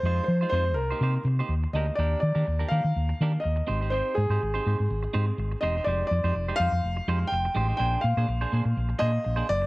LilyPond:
<<
  \new Staff \with { instrumentName = "Grand piano" } { \time 4/4 \key ees \major \tempo 4 = 124 c''8 c''8 c''8 bes'4 r4 ees''8 | d''8 d''4 f''4. ees''4 | c''8 aes'2. ees''8 | d''8 d''4 f''4. g''4 |
g''8 f''2 ees''4 d''8 | }
  \new Staff \with { instrumentName = "Clean electric guitar" } { \time 4/4 \key ees \major <aes ees' f' c''>8 r16 <aes ees' f' c''>16 <aes ees' f' c''>8 r16 <bes ees' g' c''>16 <bes ees' g' c''>8 r16 <bes ees' g' c''>16 r8 <bes d' g' bes'>8 | <bes d' g' bes'>8 r16 <bes d' g' bes'>16 r16 <bes d' g' bes'>16 <bes d' g' bes'>16 r8. <bes d' g' bes'>8 r8 <c' ees' g' c''>16 <c' ees' g' c''>16 | <c' ees' g' c''>8 r16 <c' ees' g' c''>16 r16 <c' ees' g' c''>16 <c' ees' g' c''>16 r8. <c' ees' g' c''>8 r8 <c' ees' g' c''>16 <c' ees' g' c''>16 | <aes ees' g' c''>8 r16 <aes ees' g' c''>16 r16 <aes ees' g' c''>16 <aes ees' g' c''>16 r8. <aes ees' g' c''>8 r8 <aes ees' g' c''>16 <aes ees' g' c''>16 |
<bes d' aes' c''>8 r16 <bes d' aes' c''>16 r16 <bes d' aes' c''>16 <bes d' aes' c''>16 r8. <bes d' aes' c''>8 r16 <bes d' aes' c''>8 r16 | }
  \new Staff \with { instrumentName = "Fingered electric bass" } { \clef bass \time 4/4 \key ees \major f,8 f8 f,8 c,8 c8 c8 ees,8 d,8 | ees,8 ees16 ees16 ees,8 ees16 ees16 ees,8 ees8 ees,8 aes,,8~ | aes,,8 aes,16 aes,16 aes,,8 aes,16 aes,16 aes,,8 aes,8 aes,,8 e,,8 | f,,8 f,16 f,16 f,,8 f,16 f,16 f,,8 f,8 f,,8 a,,8 |
bes,,8 bes,16 bes,16 bes,,8 bes,16 bes,16 bes,,8 bes,8 bes,,8 ges,,8 | }
>>